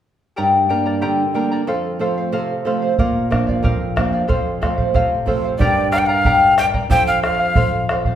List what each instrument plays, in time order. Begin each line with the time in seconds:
0.36 nylon-string guitar G2, charango G4 A#4 D5 G5 A#5
0.69 nylon-string guitar G3 A#3 D4, charango A#4 D5 G5 A#5
0.86 charango A#4 D5 A#5
1.01 nylon-string guitar D3, charango G4 A#4 D5 G5 A#5
1.34 nylon-string guitar G3 A#3 D4, charango A#4 D5 G5 A#5
1.52 charango A#4 D5 A#5
1.67 nylon-string guitar F2, charango A4 C5 F5
1.99 nylon-string guitar F3 A3 C4, charango A4 C5 F5
2.18 charango C5 F5
2.32 nylon-string guitar C3, charango A4 C5 F5
2.65 nylon-string guitar F3 A3 C4, charango A4 C5 F5
2.82 charango C5 F5
2.98 nylon-string guitar A#2, charango A#4 D5 F5, bombo low
3.30 nylon-string guitar F3 A#3 D4, charango A#4 D5 F5, bombo rim, bombo low
3.47 charango D5 F5, bombo low
3.63 nylon-string guitar F2, charango A#4 D5 F5, bombo low
3.96 nylon-string guitar F3 A#3 D4, charango A#4 D5 F5, bombo rim, bombo low
4.13 charango D5 F5
4.28 charango A4 C5 F5, bombo low
4.61 nylon-string guitar F3 A3 C4, charango A4 C5 F5, bombo rim, bombo low
4.78 charango C5 F5, bombo low
4.94 nylon-string guitar C3, charango A4 C5 F5, bombo low
5.26 nylon-string guitar F3 A3 C4, charango A4 C5 F5, bombo low
5.44 charango C5 F5
5.58 nylon-string guitar G2, charango G4 A#4 D5 G5 A#5, quena D5, bombo low
5.92 charango A#4 D5 G5 A#5, quena F5, bombo rim
5.99 quena G5
6.06 charango A#4 D5 A#5, quena F5
6.25 charango G4 A#4 D5 G5 A#5, bombo low
6.58 charango A#4 D5 G5 A#5, quena G5, bombo rim
6.74 charango A#4 D5 A#5, bombo low
6.90 nylon-string guitar F2, charango A4 C5 F5, quena G5, bombo low
7.07 quena F5
7.22 charango A4 C5 F5, quena F5, bombo rim
7.39 charango C5 F5
7.56 charango A4 C5 F5, bombo low
7.89 charango A4 C5 F5, bombo rim
8.05 charango C5 F5, bombo low